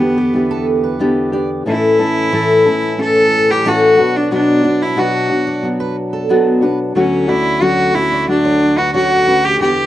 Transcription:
0.00 1.64 E2 medium
0.00 1.64 D3 medium
0.00 1.01 B3 medium
0.00 0.33 B3 soft
0.00 0.34 D4 soft
0.00 1.63 G4 medium
0.00 0.34 G4 medium
0.18 0.33 G4 medium
0.33 0.99 E3 medium
0.33 0.99 B3 medium
0.33 1.00 D4 medium
0.33 1.00 G4 medium
0.51 0.66 A4 medium
0.84 0.99 B4 medium
0.99 1.33 E3 medium
0.99 1.33 B3 medium
0.99 1.32 D4 medium
0.99 1.31 G4 medium
1.32 1.67 B3 soft
1.32 1.66 D4 medium
1.32 1.66 G4 medium
1.32 1.49 D5 medium
1.65 3.95 A2 medium
1.65 1.99 A2 medium
1.65 3.95 E3 medium
1.65 1.99 E3 medium
1.65 1.99 A3 medium
1.65 3.95 C#4 medium
1.65 2.00 C#4 medium
1.65 1.99 E4 medium
1.65 2.95 E4 loud
1.65 1.98 A4 medium
1.99 2.32 A3 soft
1.99 2.32 C#4 soft
1.99 2.32 E4 soft
1.99 2.32 A4 medium
1.99 2.15 E5 medium
2.32 2.65 A2 medium
2.32 2.65 E3 medium
2.32 2.66 A3 medium
2.32 2.66 C#4 medium
2.32 2.65 E4 medium
2.32 2.64 A4 medium
2.32 2.48 C#5 medium
2.65 2.97 A3 soft
2.65 2.98 C#4 medium
2.65 2.99 E4 soft
2.65 2.98 A4 medium
2.82 2.98 E5 medium
2.98 3.64 A3 medium
2.98 3.65 C#4 medium
2.98 3.65 E4 medium
2.98 3.65 A4 medium
2.98 3.52 A4 loud
3.15 3.31 C#5 medium
3.49 3.69 G4 loud
3.49 3.66 B4 medium
3.65 3.98 A2 medium
3.65 3.98 E3 medium
3.65 3.98 A3 medium
3.65 3.98 C#4 medium
3.65 3.98 E4 medium
3.65 4.18 F#4 loud
3.65 3.97 A4 medium
3.65 3.81 C#5 medium
3.97 6.93 B2 medium
3.97 6.93 F#3 medium
3.97 4.30 B3 medium
3.97 4.31 D4 medium
3.97 6.93 D4 medium
3.97 4.31 F#4 medium
3.97 4.14 B4 medium
4.16 4.32 D4 medium
4.30 4.64 B2 medium
4.30 4.64 F#3 medium
4.30 4.64 B3 medium
4.30 4.63 D4 medium
4.30 4.83 D4 loud
4.30 4.62 F#4 loud
4.63 4.96 B3 soft
4.63 4.96 D4 medium
4.63 4.97 F#4 medium
4.63 4.80 D5 medium
4.82 5.00 E4 medium
4.96 5.30 B2 medium
4.96 5.30 F#3 medium
4.96 5.30 B3 medium
4.96 5.30 D4 medium
4.96 5.28 F#4 medium
4.96 5.64 F#4 medium
4.96 5.13 B4 medium
5.29 5.62 B3 soft
5.29 5.63 D4 soft
5.29 5.63 F#4 medium
5.47 5.63 D5 medium
5.62 6.29 F#3 medium
5.62 6.29 B3 medium
5.62 6.30 D4 medium
5.62 6.30 F#4 medium
5.80 5.96 B4 medium
6.13 6.29 A4 medium
6.29 6.62 B2 medium
6.29 6.63 F#3 medium
6.29 6.63 B3 medium
6.29 6.62 D4 medium
6.29 6.60 F#4 loud
6.61 6.95 B3 medium
6.61 6.96 D4 medium
6.61 6.95 F#4 medium
6.61 6.78 B4 medium
6.95 9.58 D2 medium
6.95 7.28 D3 medium
6.95 9.58 D3 medium
6.95 7.29 F#3 medium
6.95 7.29 A3 medium
6.95 7.28 C#4 medium
6.95 7.30 C#4 medium
6.95 9.58 F#4 medium
6.95 7.26 F#4 medium
7.27 7.61 A3 soft
7.27 7.61 C#4 medium
7.27 7.64 E4 loud
7.27 7.61 F#4 medium
7.27 7.44 D5 medium
7.61 7.94 D3 medium
7.61 7.95 F#3 medium
7.61 7.95 A3 medium
7.61 7.94 C#4 medium
7.61 7.96 F#4 loud
7.61 7.93 F#4 medium
7.61 7.78 C#5 medium
7.94 8.27 A3 soft
7.94 8.28 C#4 medium
7.94 8.28 E4 loud
7.94 8.28 F#4 medium
8.12 8.27 D5 medium
8.27 8.93 F#3 medium
8.27 8.94 A3 medium
8.27 8.79 D4 loud
8.27 8.94 F#4 medium
8.45 8.60 C#5 medium
8.78 8.94 F#4 loud
8.78 8.93 B4 medium
8.94 9.27 D3 medium
8.94 9.27 F#3 medium
8.94 9.28 A3 medium
8.94 9.27 C#4 medium
8.94 9.46 F#4 loud
8.94 9.26 F#4 medium
8.94 9.10 C#5 medium
9.27 9.60 A3 soft
9.27 9.61 C#4 medium
9.27 9.60 F#4 medium
9.27 9.43 B4 medium
9.44 9.60 G4 loud
9.60 9.86 E2 medium
9.60 9.86 D3 medium
9.60 9.86 E3 medium
9.60 9.86 B3 medium
9.60 9.86 D4 medium
9.60 9.86 G4 medium
9.60 9.86 G4 loud

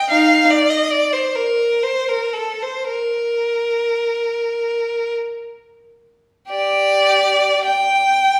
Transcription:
0.00 0.11 G5 medium
0.10 0.47 D#4 medium
0.10 0.50 F5 medium
0.50 0.71 D5 medium
0.70 0.91 D#5 medium
0.90 1.13 D5 medium
1.13 1.36 C5 medium
1.35 1.84 A#4 medium
1.83 2.09 C5 medium
2.08 2.35 A#4 medium
2.33 2.61 A4 medium
2.62 2.90 C5 medium
2.89 5.15 A#4 medium
6.49 7.60 G4 medium
6.49 7.61 D5 medium
7.65 8.40 G5 medium

